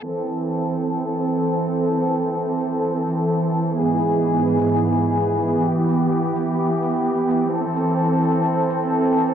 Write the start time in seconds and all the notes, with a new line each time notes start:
0.03 E3 C4 A4
0.27 open hi-hat
0.73 open hi-hat
1.20 open hi-hat
1.67 open hi-hat
2.14 open hi-hat
2.61 open hi-hat
3.08 open hi-hat
3.55 open hi-hat
3.78 G#2 B3 G#4
4.02 open hi-hat
4.48 open hi-hat
4.95 open hi-hat
5.42 open hi-hat
5.66 G4
5.89 open hi-hat
6.36 open hi-hat
6.83 open hi-hat
7.30 open hi-hat
7.53 C4 A4
7.77 open hi-hat
8.23 open hi-hat
8.70 open hi-hat
9.17 open hi-hat